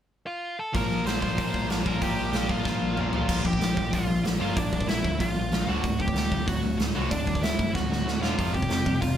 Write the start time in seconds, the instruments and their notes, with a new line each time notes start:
0.26 lead electric guitar F4 F5
0.59 lead electric guitar A4 A5
0.74 picked electric bass A#1, distorted electric guitar A#2 F3 A#3, lead electric guitar A#4 A#5, kick, open hi-hat
0.90 picked electric bass A#1
1.06 picked electric bass A#1, distorted electric guitar A#2 F3 A#3, lead electric guitar C5 C6, snare, open hi-hat
1.22 picked electric bass A#1, distorted electric guitar A#2 F3 A#3, lead electric guitar C5 C6, kick
1.37 distorted electric guitar A#2 F3 A#3, picked electric bass A#2, kick, open hi-hat
1.54 picked electric bass A#1, kick
1.69 picked electric bass A#1, distorted electric guitar A#2 F3 A#3, snare, open hi-hat
1.85 picked electric bass A#1, distorted electric guitar A#2 F3 A#3, lead electric guitar A#4 A#5, kick
2.01 picked electric bass A#1, distorted electric guitar A#2 F3 A#3, lead electric guitar G4 G5, kick, open hi-hat
2.18 picked electric bass A#1
2.33 picked electric bass A#1, distorted electric guitar A#2 F3 A#3, snare, open hi-hat
2.48 picked electric bass A#1, distorted electric guitar A#2 F3 A#3, lead electric guitar F4 F5, kick
2.64 distorted electric guitar A#2 F3 A#3, picked electric bass A#2, kick, snare
2.81 picked electric bass A#1
2.96 picked electric bass A#1, distorted electric guitar A#2 F3 A#3, mid tom
3.12 picked electric bass A#1, distorted electric guitar A#2 F3 A#3, lead electric guitar F4, floor tom
3.16 lead electric guitar F5
3.27 picked electric bass A#1, distorted electric guitar A#2 F3 A#3, kick, crash
3.43 picked electric bass A#1, distorted electric guitar A#2 F3, lead electric guitar G4, kick
3.47 lead electric guitar G5
3.53 kick
3.59 picked electric bass A#1, distorted electric guitar A#2 F3, snare, open hi-hat
3.74 picked electric bass A#1, distorted electric guitar A#2 F3, kick
3.91 picked electric bass A#1, distorted electric guitar A#2 F3, lead electric guitar F4, kick, open hi-hat
3.95 lead electric guitar F5
4.08 picked electric bass A#1, distorted electric guitar A#2 F3
4.25 picked electric bass A#1, distorted electric guitar A#2 F3, snare, open hi-hat
4.38 picked electric bass G1, distorted electric guitar A#2 F3 A#3, lead electric guitar F4 F5
4.55 picked electric bass A#1, distorted electric guitar A#2 F3, lead electric guitar D4 D5, kick, open hi-hat
4.72 picked electric bass A#1, distorted electric guitar A#2 F3, kick
4.81 kick
4.87 picked electric bass A#1, distorted electric guitar A#2 F3, lead electric guitar E4 E5, snare, open hi-hat
5.02 picked electric bass D2, distorted electric guitar A#2 F3, kick
5.19 picked electric bass A#1, distorted electric guitar A#2 F3, lead electric guitar F4 F5, kick, open hi-hat
5.35 picked electric bass A#1, distorted electric guitar A#2 F3
5.51 picked electric bass A#1, distorted electric guitar A#2 F3, snare, open hi-hat
5.67 picked electric bass D1, distorted electric guitar D2 A2 D3, lead electric guitar F#4 F#5
5.82 picked electric bass D1, distorted electric guitar D2 A2, kick, open hi-hat
5.99 picked electric bass D1, distorted electric guitar D2 A2, lead electric guitar G4 G5, kick
6.08 kick
6.14 picked electric bass D1, distorted electric guitar D2 A2, snare, open hi-hat
6.29 picked electric bass D1, distorted electric guitar D2 A2, kick
6.46 picked electric bass D1, distorted electric guitar D2 A2, lead electric guitar F#4 F#5, kick, open hi-hat
6.61 picked electric bass D1, distorted electric guitar D2 A2
6.77 picked electric bass D1, distorted electric guitar D2 A2, snare, open hi-hat
6.93 picked electric bass C2, distorted electric guitar D2 A2 D3, lead electric guitar F#4 F#5
7.09 picked electric bass D1, distorted electric guitar D2 A2, lead electric guitar D4 D5, kick, open hi-hat
7.25 picked electric bass D1, distorted electric guitar D2 A2, kick
7.35 kick
7.41 picked electric bass D1, distorted electric guitar D2 A2, lead electric guitar E4 E5, snare, open hi-hat
7.58 picked electric bass G1, distorted electric guitar D2 A2, kick
7.74 picked electric bass D1, distorted electric guitar D2 A2, lead electric guitar F#4 F#5, kick, snare
7.90 picked electric bass D1, distorted electric guitar D2 A2, snare
8.05 picked electric bass D1, distorted electric guitar D2 A2, snare
8.21 picked electric bass E1, distorted electric guitar D2 A2 D3, lead electric guitar F4 F5, snare
8.37 picked electric bass F1, distorted electric guitar F2 C3 F3, kick, open hi-hat
8.54 picked electric bass F1, distorted electric guitar F2 C3, lead electric guitar G4 G5, kick
8.62 kick
8.69 picked electric bass F1, distorted electric guitar F2 C3, snare, open hi-hat
8.85 picked electric bass F1, distorted electric guitar F2 C3, kick
9.01 picked electric bass F1, distorted electric guitar F2 C3, lead electric guitar F4 F5, kick, open hi-hat